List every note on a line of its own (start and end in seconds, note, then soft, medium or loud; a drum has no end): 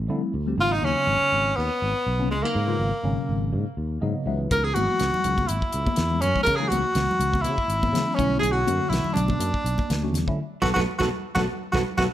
0.08 0.20 D3 medium
0.08 0.32 F3 medium
0.08 0.32 G3 medium
0.08 0.32 A3 medium
0.08 0.33 C4 medium
0.08 0.33 E4 medium
0.34 0.54 D2 medium
0.47 0.54 F3 medium
0.47 0.54 G3 medium
0.47 0.55 A3 medium
0.47 0.55 C4 medium
0.47 0.55 G4 medium
0.58 0.78 G#1 loud
0.58 0.74 C#3 medium
0.58 0.74 F#3 medium
0.58 0.75 A#3 medium
0.58 0.74 B3 medium
0.58 0.75 D#4 medium
0.58 0.73 F4 loud
0.62 0.75 F4 medium
0.72 0.85 D#4 loud
0.72 0.86 D#4 medium
0.82 0.93 D#2 medium
0.82 1.44 C#3 medium
0.82 1.44 F#3 medium
0.82 1.44 A#3 medium
0.82 1.45 B3 medium
0.82 1.57 C#4 loud
0.82 1.45 D#4 medium
0.86 1.60 C#4 medium
1.07 1.18 G#1 loud
1.21 muted fretless electric bass stroke soft
1.32 1.52 G#1 medium
1.56 1.68 D#2 medium
1.56 2.30 B3 medium
1.56 2.32 B3 medium
1.82 1.93 G#1 medium
2.07 2.31 B1 medium
2.18 2.33 C#3 medium
2.18 2.33 F#3 medium
2.18 2.33 A#3 medium
2.18 2.34 B3 medium
2.18 2.34 C#4 medium
2.31 2.42 C#2 medium
2.31 2.44 G#3 medium
2.31 2.45 G#3 medium
2.42 2.58 C#3 medium
2.42 2.58 F#3 medium
2.42 3.41 A#3 medium
2.42 2.58 A#3 medium
2.42 3.42 A#3 medium
2.42 2.58 B3 medium
2.42 2.58 D#4 medium
2.55 2.75 G#2 loud
2.66 2.90 C#3 medium
2.66 2.90 F#3 medium
2.66 2.90 A#3 medium
2.66 2.90 B3 medium
2.66 2.90 F4 loud
2.80 2.90 G#1 medium
3.03 3.15 G#1 medium
3.03 3.65 B2 medium
3.03 3.65 C#3 medium
3.03 3.65 F#3 medium
3.03 3.65 A#3 medium
3.03 3.66 C#4 medium
3.29 3.54 G#1 medium
3.53 3.64 G#2 medium
3.77 3.97 D#2 medium
4.01 4.13 G#2 medium
4.01 4.24 C#3 medium
4.01 4.24 F#3 medium
4.01 4.25 A#3 medium
4.01 4.25 B3 medium
4.01 4.25 D#4 medium
4.01 4.25 D#5 medium
4.26 4.46 C#2 medium
4.26 4.66 E3 medium
4.26 4.66 F#3 medium
4.26 4.67 G#3 medium
4.26 4.67 B3 medium
4.26 4.67 D#4 medium
4.26 4.49 E5 medium
4.51 4.71 C#2 loud
4.51 4.64 A#4 medium
4.51 4.66 A#4 medium
4.51 kick loud
4.51 closed hi-hat medium
4.64 4.76 G#4 medium
4.74 4.86 G#1 medium
4.74 5.36 E3 medium
4.74 5.36 F#3 medium
4.74 5.37 G#3 medium
4.74 5.37 B3 medium
4.74 5.49 F#4 loud
4.74 5.48 F#4 medium
4.74 5.37 F#4 medium
4.74 closed hi-hat medium
4.74 high conga medium
5.00 5.11 C#2 medium
5.00 snare medium
5.00 closed hi-hat medium
5.14 low conga medium
5.24 5.46 C#2 medium
5.24 closed hi-hat medium
5.24 low conga medium
5.38 kick medium
5.38 high conga medium
5.47 5.60 G#1 medium
5.47 6.23 E4 medium
5.47 6.21 E4 medium
5.47 closed hi-hat medium
5.62 kick medium
5.73 5.85 C#2 medium
5.73 closed hi-hat medium
5.87 kick medium
5.87 high conga medium
5.96 6.22 E2 medium
5.96 snare medium
5.96 closed hi-hat medium
6.10 6.25 E3 medium
6.10 6.25 F#3 medium
6.10 6.25 G#3 medium
6.10 6.26 B3 medium
6.10 6.26 D#4 medium
6.21 6.33 F#2 medium
6.21 6.42 C#4 medium
6.21 6.46 C#4 medium
6.21 closed hi-hat medium
6.21 low conga medium
6.35 6.50 E3 medium
6.35 6.50 F#3 medium
6.35 6.50 G#3 medium
6.35 6.50 B3 medium
6.35 6.50 D#4 medium
6.35 kick medium
6.43 6.57 A#4 loud
6.43 6.58 A#4 medium
6.43 closed hi-hat medium
6.47 6.67 C#3 loud
6.47 kick loud
6.56 6.82 E3 medium
6.56 6.69 G#4 medium
6.56 6.70 G#4 medium
6.60 6.82 F#3 medium
6.60 6.82 G#3 medium
6.60 6.82 B3 medium
6.60 6.83 D#4 medium
6.68 6.82 C#2 medium
6.68 7.43 F#4 loud
6.68 7.44 F#4 medium
6.68 closed hi-hat medium
6.72 high conga medium
6.95 7.06 C#2 medium
6.95 7.57 E3 medium
6.95 7.57 F#3 medium
6.95 7.57 G#3 medium
6.95 7.57 B3 medium
6.95 7.57 F#4 medium
6.95 snare loud
6.95 closed hi-hat medium
7.11 low conga medium
7.20 7.46 C#2 medium
7.20 closed hi-hat medium
7.34 kick medium
7.34 high conga medium
7.41 7.55 C#3 medium
7.41 8.16 E4 medium
7.41 8.18 E4 medium
7.41 closed hi-hat medium
7.58 kick medium
7.68 7.89 G#1 medium
7.68 closed hi-hat medium
7.83 kick medium
7.83 high conga medium
7.92 8.04 C#3 medium
7.92 8.16 E3 medium
7.92 8.16 F#3 medium
7.92 8.16 G#3 medium
7.92 8.17 B3 medium
7.92 8.17 C#4 medium
7.92 snare medium
7.92 closed hi-hat medium
8.15 8.39 B1 medium
8.15 8.58 D3 medium
8.15 8.58 F#3 medium
8.15 8.39 C#4 medium
8.15 8.42 C#4 medium
8.19 8.58 A3 medium
8.19 8.58 C#4 medium
8.19 8.59 E4 medium
8.19 kick loud
8.19 closed hi-hat medium
8.19 low conga medium
8.39 8.63 B1 loud
8.39 8.53 G#4 medium
8.39 8.52 G#4 medium
8.39 closed hi-hat medium
8.51 8.90 F#4 medium
8.66 8.78 F#2 medium
8.66 9.27 D3 medium
8.66 9.28 F#3 medium
8.66 9.28 A3 medium
8.66 9.28 C#4 medium
8.66 9.28 F#4 medium
8.66 closed hi-hat medium
8.66 high conga medium
8.89 9.02 B1 loud
8.89 9.15 E4 medium
8.89 closed hi-hat medium
8.94 snare loud
9.04 muted fretless electric bass stroke soft
9.04 low conga medium
9.13 9.36 B1 medium
9.13 10.37 D4 medium
9.13 closed hi-hat medium
9.13 low conga medium
9.28 kick medium
9.28 high conga medium
9.39 9.51 F#2 medium
9.39 closed hi-hat loud
9.54 kick medium
9.64 9.75 B1 medium
9.64 closed hi-hat medium
9.78 kick medium
9.78 high conga medium
9.90 10.14 D2 medium
9.90 snare medium
9.90 closed hi-hat medium
10.02 10.17 D3 medium
10.02 10.17 F#3 medium
10.02 10.17 A3 medium
10.02 10.17 C#4 medium
10.02 10.17 F#4 medium
10.14 10.25 E2 medium
10.14 snare soft
10.14 closed hi-hat medium
10.14 low conga medium
10.27 10.38 D3 medium
10.27 10.38 F#3 medium
10.27 10.38 A3 medium
10.27 10.39 C#4 medium
10.27 10.39 E4 medium
10.27 kick medium
10.62 10.73 B1 medium
10.62 10.71 F#3 medium
10.62 10.71 A3 medium
10.62 10.71 B3 loud
10.62 10.68 F#4 medium
10.62 10.71 F#4 medium
10.62 10.71 A4 medium
10.62 10.70 B4 medium
10.62 kick medium
10.62 snare loud
10.62 low conga loud
10.74 10.85 B1 medium
10.74 10.84 F#3 loud
10.74 10.84 B3 medium
10.74 10.80 F#4 medium
10.74 10.83 F#4 medium
10.74 10.83 A4 medium
10.74 10.83 B4 loud
10.74 kick medium
10.74 low conga medium
10.78 10.84 A3 medium
10.78 snare medium
10.98 11.09 B1 medium
10.98 11.09 F#3 medium
10.98 11.08 A3 medium
10.98 11.09 B3 medium
10.98 11.04 F#4 medium
10.98 11.08 F#4 medium
10.98 11.08 A4 medium
10.98 11.08 B4 medium
10.98 kick medium
10.98 snare loud
10.98 low conga medium
11.34 11.46 B1 medium
11.34 11.45 F#3 medium
11.34 11.45 A3 medium
11.34 11.45 B3 medium
11.34 11.41 F#4 medium
11.34 11.45 F#4 medium
11.34 11.45 A4 loud
11.34 11.45 B4 medium
11.34 kick medium
11.34 snare loud
11.34 low conga loud
11.72 11.83 B1 medium
11.72 11.81 F#3 medium
11.72 11.82 A3 medium
11.72 11.82 B3 medium
11.72 11.78 F#4 medium
11.72 11.82 F#4 medium
11.72 11.82 A4 medium
11.72 11.82 B4 medium
11.72 kick medium
11.72 low conga medium
11.76 snare loud
11.97 12.07 B1 medium
11.97 12.06 F#3 medium
11.97 12.06 A3 medium
11.97 12.05 B3 loud
11.97 12.03 F#4 medium
11.97 12.06 F#4 medium
11.97 12.06 A4 medium
11.97 12.06 B4 medium
11.97 kick medium
11.97 snare medium
11.97 low conga medium